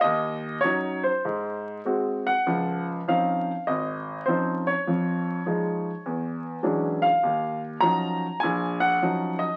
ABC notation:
X:1
M:4/4
L:1/8
Q:"Swing" 1/4=100
K:Db
V:1 name="Grand piano"
e2 d c3 z g- | g z f2 e2 c d- | d4- d z2 f- | f z b2 a g2 e |]
V:2 name="Grand piano" clef=bass
E,,2 [G,DE] z A,,2 [A,CG] z | [D,,F,]2 [F,CDE] z A,,,2 [F,CDE] z | [F,,F,]2 [F,A,E] z =E,,2 [=E,^F,^G,^C=D] z | E,,2 [F,G,DE] z B,,,2 [F,G,DE] z |]